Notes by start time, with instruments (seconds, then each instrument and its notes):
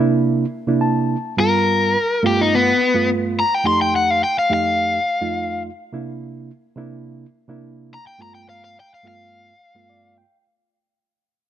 Already playing: reed electric piano C3 A#3 D4 E4
0.67 reed electric piano C3 A#3 D4 E4
0.81 reed electric piano A5
1.37 reed electric piano G2 G3 B3 F4, overdriven electric guitar A#4
2.23 reed electric piano G2 A3 B3 F4, overdriven electric guitar G4
2.41 overdriven electric guitar D#4
2.55 overdriven electric guitar B3
2.94 reed electric piano G2 A3 B3 F4
3.40 overdriven electric guitar A#5
3.54 overdriven electric guitar G5
3.64 reed electric piano F2 A3 D#4 G4, overdriven electric guitar C6
3.81 overdriven electric guitar G5
3.96 overdriven electric guitar F#5
4.10 overdriven electric guitar F5
4.24 overdriven electric guitar G5
4.39 overdriven electric guitar F5
4.50 reed electric piano F2 A3 D#4 G4, overdriven electric guitar F5
5.21 reed electric piano F2 A3 D#4 F4
5.92 reed electric piano C3 A#3 D4 E4
6.76 reed electric piano C3 A#3 D4 E4
7.48 reed electric piano C3 A#3 D4 E4
7.94 overdriven electric guitar A#5
8.07 overdriven electric guitar G5
8.18 reed electric piano G2 A3 B3 F4, overdriven electric guitar A#5
8.35 overdriven electric guitar G5
8.49 overdriven electric guitar F5
8.64 overdriven electric guitar F5
8.80 overdriven electric guitar G5
8.94 overdriven electric guitar F5
9.03 reed electric piano G2 A3 B3 F4
9.08 overdriven electric guitar F5
9.74 reed electric piano G2 A3 B3 F4
9.90 reed electric piano D5
10.18 reed electric piano G5